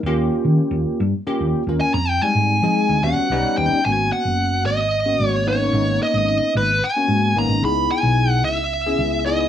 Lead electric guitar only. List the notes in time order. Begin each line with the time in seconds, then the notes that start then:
1.81 G#5
1.94 A#5
2.09 G5
2.22 G#5
3.04 F#5
3.58 G5
3.85 G#5
4.12 F#5
4.66 D#5
5.27 C#5
5.48 C#5
6.03 D#5
6.57 B4
6.84 G#5
7.39 A#5
7.65 B5
7.91 G#5
8.44 E5
9.26 D#5